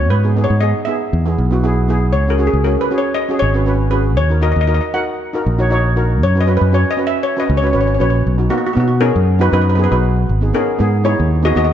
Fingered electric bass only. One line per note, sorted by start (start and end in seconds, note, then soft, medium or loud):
0.00 0.11 C#2 medium
0.11 0.45 G#2 medium
0.50 0.72 G#2 medium
1.13 1.35 E2 medium
1.38 2.14 B1 medium
2.14 2.48 C#2 medium
2.53 2.76 C#2 medium
3.42 4.18 G#1 medium
4.18 4.52 D#2 medium
4.56 4.79 D#2 medium
5.46 6.23 A#1 medium
6.23 6.56 F#2 medium
6.61 6.83 F#2 medium
7.50 7.71 C#2 loud
7.74 7.97 G#1 medium
8.00 8.23 A#1 medium
8.27 8.48 B1 medium
8.77 9.10 B2 medium
9.16 9.48 F#2 medium
9.53 9.86 F#2 medium
9.92 10.24 B1 medium
10.29 10.51 G#1 medium
10.80 11.14 G#2 medium
11.20 11.52 D#2 loud
11.56 11.73 D#2 medium